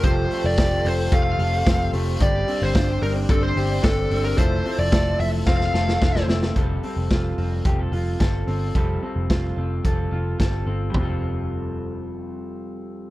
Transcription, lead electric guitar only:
X:1
M:4/4
L:1/16
Q:1/4=110
K:F
V:1 name="Lead electric guitar"
c3 d3 c2 f6 z2 | d3 c3 B2 A c3 A3 B | c3 d3 e2 f6 z2 | z16 |
z16 | z16 |]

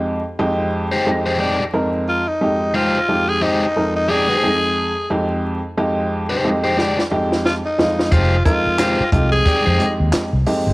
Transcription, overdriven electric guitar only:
X:1
M:4/4
L:1/16
Q:"Swing 16ths" 1/4=89
K:Fm
V:1 name="Overdriven electric guitar"
z4 z [A,EGc] z [A,EGc] [A,EG=d] z6 z | [A,EGc] z3 [A,EGc] z3 [A,EG=d] [A,EGc] z6 | z4 z [A,EGc] z [A,EGc] [A,EG=d] z6 z | [A,EGc] z3 [A,EGc] z3 [A,EG=d] [A,EGc] z6 |]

